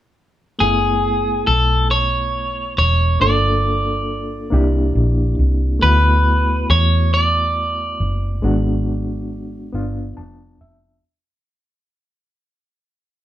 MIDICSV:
0, 0, Header, 1, 4, 480
1, 0, Start_track
1, 0, Key_signature, 3, "minor"
1, 0, Tempo, 869565
1, 328, Time_signature, 6, 3, 24, 8
1, 7311, End_track
2, 0, Start_track
2, 0, Title_t, "Clean electric guitar"
2, 0, Program_c, 0, 27
2, 333, Note_on_c, 0, 68, 74
2, 810, Note_off_c, 0, 68, 0
2, 812, Note_on_c, 0, 69, 70
2, 1033, Note_off_c, 0, 69, 0
2, 1054, Note_on_c, 0, 73, 90
2, 1509, Note_off_c, 0, 73, 0
2, 1537, Note_on_c, 0, 73, 82
2, 1772, Note_off_c, 0, 73, 0
2, 1775, Note_on_c, 0, 74, 87
2, 2949, Note_off_c, 0, 74, 0
2, 3215, Note_on_c, 0, 71, 82
2, 3699, Note_off_c, 0, 71, 0
2, 3701, Note_on_c, 0, 73, 87
2, 3938, Note_off_c, 0, 73, 0
2, 3940, Note_on_c, 0, 74, 89
2, 5592, Note_off_c, 0, 74, 0
2, 7311, End_track
3, 0, Start_track
3, 0, Title_t, "Reed electric piano"
3, 0, Program_c, 1, 4
3, 324, Note_on_c, 1, 57, 57
3, 333, Note_on_c, 1, 59, 51
3, 345, Note_on_c, 1, 64, 51
3, 355, Note_on_c, 1, 80, 57
3, 446, Control_c, 1, 64, 127
3, 1744, Note_off_c, 1, 57, 0
3, 1749, Note_off_c, 1, 59, 0
3, 1754, Note_off_c, 1, 64, 0
3, 1759, Note_off_c, 1, 80, 0
3, 1766, Note_on_c, 1, 57, 43
3, 1771, Note_on_c, 1, 62, 53
3, 1774, Control_c, 1, 64, 0
3, 1777, Note_on_c, 1, 65, 50
3, 1781, Note_on_c, 1, 69, 63
3, 1802, Note_on_c, 1, 58, 55
3, 1803, Note_off_c, 1, 57, 0
3, 1876, Control_c, 1, 64, 127
3, 2480, Note_off_c, 1, 58, 0
3, 2485, Note_off_c, 1, 62, 0
3, 2486, Note_on_c, 1, 58, 65
3, 2492, Note_on_c, 1, 62, 67
3, 2493, Note_off_c, 1, 65, 0
3, 2495, Note_off_c, 1, 69, 0
3, 2495, Control_c, 1, 64, 0
3, 2496, Note_on_c, 1, 64, 63
3, 2504, Note_on_c, 1, 67, 79
3, 2602, Control_c, 1, 64, 127
3, 3198, Note_on_c, 1, 57, 62
3, 3207, Note_off_c, 1, 58, 0
3, 3210, Note_off_c, 1, 62, 0
3, 3210, Note_on_c, 1, 59, 58
3, 3212, Note_off_c, 1, 64, 0
3, 3215, Control_c, 1, 64, 0
3, 3216, Note_off_c, 1, 67, 0
3, 3220, Note_on_c, 1, 64, 51
3, 3230, Note_on_c, 1, 66, 66
3, 3296, Control_c, 1, 64, 127
3, 4621, Note_off_c, 1, 57, 0
3, 4627, Note_off_c, 1, 59, 0
3, 4632, Note_off_c, 1, 64, 0
3, 4637, Note_off_c, 1, 66, 0
3, 4649, Note_on_c, 1, 56, 75
3, 4653, Note_on_c, 1, 59, 59
3, 4655, Control_c, 1, 64, 0
3, 4659, Note_on_c, 1, 62, 63
3, 4664, Note_on_c, 1, 66, 79
3, 4764, Control_c, 1, 64, 127
3, 5362, Note_off_c, 1, 59, 0
3, 5369, Note_off_c, 1, 56, 0
3, 5369, Note_on_c, 1, 59, 69
3, 5373, Note_off_c, 1, 62, 0
3, 5374, Control_c, 1, 64, 0
3, 5376, Note_off_c, 1, 66, 0
3, 5379, Note_on_c, 1, 62, 61
3, 5382, Note_on_c, 1, 65, 76
3, 5473, Control_c, 1, 64, 127
3, 5613, Note_on_c, 1, 81, 64
3, 5834, Note_off_c, 1, 81, 0
3, 5856, Note_on_c, 1, 76, 65
3, 6076, Note_off_c, 1, 76, 0
3, 6088, Note_off_c, 1, 59, 0
3, 6094, Note_off_c, 1, 62, 0
3, 6094, Control_c, 1, 64, 0
3, 6095, Note_off_c, 1, 65, 0
3, 7311, End_track
4, 0, Start_track
4, 0, Title_t, "Fingered electric bass"
4, 0, Program_c, 2, 33
4, 334, Note_on_c, 2, 30, 82
4, 789, Note_off_c, 2, 30, 0
4, 814, Note_on_c, 2, 35, 82
4, 1509, Note_off_c, 2, 35, 0
4, 1534, Note_on_c, 2, 28, 76
4, 1749, Note_off_c, 2, 28, 0
4, 1774, Note_on_c, 2, 31, 79
4, 2469, Note_off_c, 2, 31, 0
4, 2496, Note_on_c, 2, 36, 87
4, 2710, Note_off_c, 2, 36, 0
4, 2734, Note_on_c, 2, 34, 67
4, 2949, Note_off_c, 2, 34, 0
4, 2975, Note_on_c, 2, 36, 76
4, 3190, Note_off_c, 2, 36, 0
4, 3215, Note_on_c, 2, 38, 88
4, 3669, Note_off_c, 2, 38, 0
4, 3696, Note_on_c, 2, 40, 82
4, 4390, Note_off_c, 2, 40, 0
4, 4416, Note_on_c, 2, 30, 83
4, 4630, Note_off_c, 2, 30, 0
4, 4656, Note_on_c, 2, 32, 87
4, 5350, Note_off_c, 2, 32, 0
4, 5376, Note_on_c, 2, 31, 86
4, 5590, Note_off_c, 2, 31, 0
4, 5618, Note_on_c, 2, 29, 76
4, 5831, Note_off_c, 2, 29, 0
4, 5856, Note_on_c, 2, 29, 74
4, 6070, Note_off_c, 2, 29, 0
4, 7311, End_track
0, 0, End_of_file